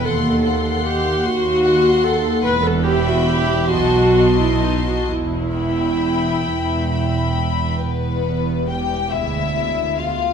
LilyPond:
<<
  \new Staff \with { instrumentName = "Violin section" } { \time 6/8 \key e \minor \tempo 4. = 47 bis''8 bis''4. bis''4 | r8 b''4 c'''8 c'''4 | r8 b''4. b''4 | b'4 g''8 e''4 f''8 | }
  \new Staff \with { instrumentName = "Violin section" } { \time 6/8 \key e \minor fis''8 fis''4. fis''4 | r8 <e'' g''>4 <dis'' a''>8 <dis'' a''>4 | r8 <e'' g''>4. <e'' g''>4 | b4 g'8 e'4 f'8 | }
  \new Staff \with { instrumentName = "Viola section" } { \time 6/8 \key e \minor a'4 g'8 fis'4 a'8 | b'16 a'16 g'16 fis'16 g'8 fis'8. e'16 dis'16 fis'16 | e'2~ e'8 r8 | r8 <g b>4 <gis b>8 <gis b>4 | }
  \new Staff \with { instrumentName = "Cello section" } { \clef bass \time 6/8 \key e \minor dis,4. dis,4. | e,4. b,4. | e,4. e,4. | e,4. d,4. | }
  \new Staff \with { instrumentName = "Double bass section" } { \clef bass \time 6/8 \key e \minor dis,4. dis,4. | e,,4. b,,4. | e,,4. e,,4. | e,,4. d,4. | }
>>